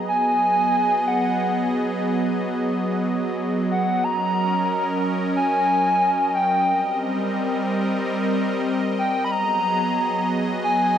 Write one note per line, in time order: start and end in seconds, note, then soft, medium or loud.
0.00 6.64 F#3 medium
0.00 4.00 B3 medium
0.00 4.00 G#4 medium
0.00 4.00 D#5 medium
0.08 1.09 G#5 loud
1.07 1.73 F#5 loud
3.71 4.05 F#5 loud
4.04 6.65 C#4 medium
4.04 6.65 A#4 medium
4.04 10.98 D#5 medium
4.04 5.03 A#5 loud
5.36 6.31 G#5 loud
6.35 6.97 G5 loud
6.68 9.29 G3 medium
6.68 9.29 C4 medium
6.68 9.29 A#4 medium
8.99 9.23 G5 loud
9.25 9.33 B5 medium
9.32 10.98 F#3 medium
9.32 10.98 B3 medium
9.32 10.98 G#4 medium
9.32 10.30 A#5 loud
10.64 10.98 G#5 loud